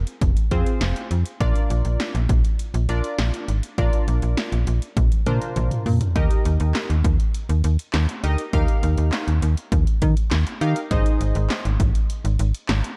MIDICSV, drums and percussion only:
0, 0, Header, 1, 2, 480
1, 0, Start_track
1, 0, Key_signature, -3, "major"
1, 0, Tempo, 594059
1, 1135, Time_signature, 4, 2, 24, 8
1, 10477, End_track
2, 0, Start_track
2, 0, Title_t, "Drums"
2, 56, Note_on_c, 9, 42, 52
2, 137, Note_off_c, 9, 42, 0
2, 173, Note_on_c, 9, 36, 98
2, 175, Note_on_c, 9, 42, 72
2, 254, Note_off_c, 9, 36, 0
2, 256, Note_off_c, 9, 42, 0
2, 296, Note_on_c, 9, 42, 51
2, 377, Note_off_c, 9, 42, 0
2, 414, Note_on_c, 9, 42, 69
2, 416, Note_on_c, 9, 36, 77
2, 495, Note_off_c, 9, 42, 0
2, 497, Note_off_c, 9, 36, 0
2, 537, Note_on_c, 9, 42, 58
2, 617, Note_off_c, 9, 42, 0
2, 654, Note_on_c, 9, 38, 120
2, 654, Note_on_c, 9, 42, 66
2, 735, Note_off_c, 9, 38, 0
2, 735, Note_off_c, 9, 42, 0
2, 777, Note_on_c, 9, 42, 58
2, 858, Note_off_c, 9, 42, 0
2, 896, Note_on_c, 9, 42, 73
2, 976, Note_off_c, 9, 42, 0
2, 1015, Note_on_c, 9, 42, 62
2, 1095, Note_off_c, 9, 42, 0
2, 1135, Note_on_c, 9, 36, 121
2, 1135, Note_on_c, 9, 42, 73
2, 1216, Note_off_c, 9, 36, 0
2, 1216, Note_off_c, 9, 42, 0
2, 1257, Note_on_c, 9, 42, 60
2, 1337, Note_off_c, 9, 42, 0
2, 1376, Note_on_c, 9, 42, 74
2, 1457, Note_off_c, 9, 42, 0
2, 1493, Note_on_c, 9, 42, 46
2, 1574, Note_off_c, 9, 42, 0
2, 1615, Note_on_c, 9, 38, 110
2, 1616, Note_on_c, 9, 42, 70
2, 1695, Note_off_c, 9, 38, 0
2, 1697, Note_off_c, 9, 42, 0
2, 1736, Note_on_c, 9, 42, 47
2, 1817, Note_off_c, 9, 42, 0
2, 1853, Note_on_c, 9, 36, 90
2, 1855, Note_on_c, 9, 42, 73
2, 1934, Note_off_c, 9, 36, 0
2, 1935, Note_off_c, 9, 42, 0
2, 1976, Note_on_c, 9, 42, 50
2, 2057, Note_off_c, 9, 42, 0
2, 2095, Note_on_c, 9, 42, 73
2, 2176, Note_off_c, 9, 42, 0
2, 2216, Note_on_c, 9, 42, 52
2, 2297, Note_off_c, 9, 42, 0
2, 2334, Note_on_c, 9, 42, 72
2, 2415, Note_off_c, 9, 42, 0
2, 2456, Note_on_c, 9, 42, 57
2, 2537, Note_off_c, 9, 42, 0
2, 2573, Note_on_c, 9, 38, 114
2, 2574, Note_on_c, 9, 42, 65
2, 2654, Note_off_c, 9, 38, 0
2, 2654, Note_off_c, 9, 42, 0
2, 2697, Note_on_c, 9, 42, 58
2, 2778, Note_off_c, 9, 42, 0
2, 2815, Note_on_c, 9, 42, 76
2, 2896, Note_off_c, 9, 42, 0
2, 2934, Note_on_c, 9, 42, 65
2, 3015, Note_off_c, 9, 42, 0
2, 3055, Note_on_c, 9, 36, 115
2, 3055, Note_on_c, 9, 42, 75
2, 3136, Note_off_c, 9, 36, 0
2, 3136, Note_off_c, 9, 42, 0
2, 3176, Note_on_c, 9, 42, 61
2, 3256, Note_off_c, 9, 42, 0
2, 3295, Note_on_c, 9, 42, 74
2, 3376, Note_off_c, 9, 42, 0
2, 3412, Note_on_c, 9, 42, 46
2, 3493, Note_off_c, 9, 42, 0
2, 3534, Note_on_c, 9, 38, 109
2, 3535, Note_on_c, 9, 42, 67
2, 3615, Note_off_c, 9, 38, 0
2, 3616, Note_off_c, 9, 42, 0
2, 3655, Note_on_c, 9, 42, 48
2, 3736, Note_off_c, 9, 42, 0
2, 3774, Note_on_c, 9, 42, 75
2, 3855, Note_off_c, 9, 42, 0
2, 3895, Note_on_c, 9, 42, 51
2, 3976, Note_off_c, 9, 42, 0
2, 4013, Note_on_c, 9, 36, 98
2, 4014, Note_on_c, 9, 42, 72
2, 4014, Note_on_c, 9, 48, 59
2, 4094, Note_off_c, 9, 36, 0
2, 4095, Note_off_c, 9, 42, 0
2, 4095, Note_off_c, 9, 48, 0
2, 4135, Note_on_c, 9, 42, 52
2, 4216, Note_off_c, 9, 42, 0
2, 4253, Note_on_c, 9, 42, 71
2, 4254, Note_on_c, 9, 47, 68
2, 4334, Note_off_c, 9, 42, 0
2, 4335, Note_off_c, 9, 47, 0
2, 4376, Note_on_c, 9, 42, 58
2, 4456, Note_off_c, 9, 42, 0
2, 4493, Note_on_c, 9, 42, 66
2, 4494, Note_on_c, 9, 45, 85
2, 4574, Note_off_c, 9, 42, 0
2, 4575, Note_off_c, 9, 45, 0
2, 4614, Note_on_c, 9, 45, 78
2, 4616, Note_on_c, 9, 42, 58
2, 4695, Note_off_c, 9, 45, 0
2, 4697, Note_off_c, 9, 42, 0
2, 4734, Note_on_c, 9, 43, 97
2, 4735, Note_on_c, 9, 46, 74
2, 4815, Note_off_c, 9, 43, 0
2, 4816, Note_off_c, 9, 46, 0
2, 4854, Note_on_c, 9, 42, 63
2, 4854, Note_on_c, 9, 43, 93
2, 4935, Note_off_c, 9, 42, 0
2, 4935, Note_off_c, 9, 43, 0
2, 4975, Note_on_c, 9, 36, 121
2, 4975, Note_on_c, 9, 42, 77
2, 5055, Note_off_c, 9, 42, 0
2, 5056, Note_off_c, 9, 36, 0
2, 5095, Note_on_c, 9, 42, 62
2, 5176, Note_off_c, 9, 42, 0
2, 5215, Note_on_c, 9, 42, 73
2, 5295, Note_off_c, 9, 42, 0
2, 5332, Note_on_c, 9, 42, 47
2, 5413, Note_off_c, 9, 42, 0
2, 5454, Note_on_c, 9, 38, 115
2, 5454, Note_on_c, 9, 39, 91
2, 5455, Note_on_c, 9, 42, 71
2, 5534, Note_off_c, 9, 38, 0
2, 5534, Note_off_c, 9, 39, 0
2, 5536, Note_off_c, 9, 42, 0
2, 5575, Note_on_c, 9, 42, 49
2, 5656, Note_off_c, 9, 42, 0
2, 5692, Note_on_c, 9, 36, 93
2, 5694, Note_on_c, 9, 42, 75
2, 5773, Note_off_c, 9, 36, 0
2, 5775, Note_off_c, 9, 42, 0
2, 5816, Note_on_c, 9, 42, 50
2, 5896, Note_off_c, 9, 42, 0
2, 5934, Note_on_c, 9, 42, 72
2, 6015, Note_off_c, 9, 42, 0
2, 6056, Note_on_c, 9, 42, 53
2, 6137, Note_off_c, 9, 42, 0
2, 6173, Note_on_c, 9, 42, 73
2, 6254, Note_off_c, 9, 42, 0
2, 6296, Note_on_c, 9, 42, 60
2, 6377, Note_off_c, 9, 42, 0
2, 6413, Note_on_c, 9, 38, 116
2, 6413, Note_on_c, 9, 39, 98
2, 6413, Note_on_c, 9, 42, 66
2, 6494, Note_off_c, 9, 38, 0
2, 6494, Note_off_c, 9, 39, 0
2, 6494, Note_off_c, 9, 42, 0
2, 6536, Note_on_c, 9, 42, 58
2, 6617, Note_off_c, 9, 42, 0
2, 6655, Note_on_c, 9, 42, 76
2, 6736, Note_off_c, 9, 42, 0
2, 6774, Note_on_c, 9, 42, 64
2, 6855, Note_off_c, 9, 42, 0
2, 6895, Note_on_c, 9, 36, 118
2, 6895, Note_on_c, 9, 42, 76
2, 6975, Note_off_c, 9, 42, 0
2, 6976, Note_off_c, 9, 36, 0
2, 7016, Note_on_c, 9, 42, 61
2, 7096, Note_off_c, 9, 42, 0
2, 7135, Note_on_c, 9, 42, 76
2, 7216, Note_off_c, 9, 42, 0
2, 7252, Note_on_c, 9, 42, 47
2, 7333, Note_off_c, 9, 42, 0
2, 7374, Note_on_c, 9, 38, 113
2, 7374, Note_on_c, 9, 39, 92
2, 7375, Note_on_c, 9, 42, 70
2, 7455, Note_off_c, 9, 38, 0
2, 7455, Note_off_c, 9, 39, 0
2, 7456, Note_off_c, 9, 42, 0
2, 7495, Note_on_c, 9, 42, 48
2, 7576, Note_off_c, 9, 42, 0
2, 7614, Note_on_c, 9, 42, 76
2, 7695, Note_off_c, 9, 42, 0
2, 7736, Note_on_c, 9, 42, 53
2, 7817, Note_off_c, 9, 42, 0
2, 7853, Note_on_c, 9, 36, 99
2, 7855, Note_on_c, 9, 42, 76
2, 7934, Note_off_c, 9, 36, 0
2, 7936, Note_off_c, 9, 42, 0
2, 7976, Note_on_c, 9, 42, 52
2, 8057, Note_off_c, 9, 42, 0
2, 8094, Note_on_c, 9, 42, 74
2, 8096, Note_on_c, 9, 36, 81
2, 8175, Note_off_c, 9, 42, 0
2, 8177, Note_off_c, 9, 36, 0
2, 8216, Note_on_c, 9, 42, 58
2, 8297, Note_off_c, 9, 42, 0
2, 8333, Note_on_c, 9, 38, 122
2, 8333, Note_on_c, 9, 39, 99
2, 8334, Note_on_c, 9, 42, 66
2, 8414, Note_off_c, 9, 38, 0
2, 8414, Note_off_c, 9, 39, 0
2, 8415, Note_off_c, 9, 42, 0
2, 8457, Note_on_c, 9, 42, 58
2, 8538, Note_off_c, 9, 42, 0
2, 8575, Note_on_c, 9, 42, 74
2, 8656, Note_off_c, 9, 42, 0
2, 8694, Note_on_c, 9, 42, 67
2, 8775, Note_off_c, 9, 42, 0
2, 8815, Note_on_c, 9, 36, 115
2, 8815, Note_on_c, 9, 42, 77
2, 8896, Note_off_c, 9, 36, 0
2, 8896, Note_off_c, 9, 42, 0
2, 8936, Note_on_c, 9, 42, 61
2, 9017, Note_off_c, 9, 42, 0
2, 9055, Note_on_c, 9, 42, 76
2, 9136, Note_off_c, 9, 42, 0
2, 9172, Note_on_c, 9, 42, 47
2, 9253, Note_off_c, 9, 42, 0
2, 9294, Note_on_c, 9, 38, 112
2, 9294, Note_on_c, 9, 39, 95
2, 9295, Note_on_c, 9, 42, 70
2, 9375, Note_off_c, 9, 38, 0
2, 9375, Note_off_c, 9, 39, 0
2, 9376, Note_off_c, 9, 42, 0
2, 9416, Note_on_c, 9, 42, 49
2, 9496, Note_off_c, 9, 42, 0
2, 9533, Note_on_c, 9, 36, 94
2, 9535, Note_on_c, 9, 42, 78
2, 9614, Note_off_c, 9, 36, 0
2, 9616, Note_off_c, 9, 42, 0
2, 9656, Note_on_c, 9, 42, 53
2, 9737, Note_off_c, 9, 42, 0
2, 9775, Note_on_c, 9, 42, 75
2, 9856, Note_off_c, 9, 42, 0
2, 9897, Note_on_c, 9, 42, 52
2, 9977, Note_off_c, 9, 42, 0
2, 10014, Note_on_c, 9, 42, 72
2, 10095, Note_off_c, 9, 42, 0
2, 10137, Note_on_c, 9, 42, 59
2, 10217, Note_off_c, 9, 42, 0
2, 10254, Note_on_c, 9, 38, 119
2, 10254, Note_on_c, 9, 39, 96
2, 10254, Note_on_c, 9, 42, 67
2, 10335, Note_off_c, 9, 38, 0
2, 10335, Note_off_c, 9, 39, 0
2, 10335, Note_off_c, 9, 42, 0
2, 10377, Note_on_c, 9, 42, 60
2, 10458, Note_off_c, 9, 42, 0
2, 10477, End_track
0, 0, End_of_file